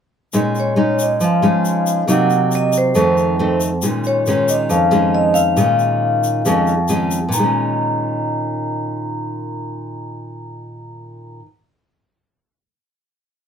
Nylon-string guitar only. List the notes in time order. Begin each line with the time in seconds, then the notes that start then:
0.33 A#2 G#3 C#4 D#4
0.76 G#3 C#4 D#4
1.21 F3
1.42 G#3 C#4 D#4
2.08 C3 F#3 A#3 D#4
2.95 F2 D#3 A3 C4
3.39 D#3 A3 C4
3.83 A#2 D#3 G#3 C#4
4.27 D#3 G#3 C#4
4.69 F2
4.91 D#3 G#3 C#4
5.56 A#2 D#3 G#3 C#4
6.45 F2 D#3 G#3 C#4
6.89 D#3 G#3 C#4
7.29 A#2
7.35 D#3
7.39 G#3
7.44 C#4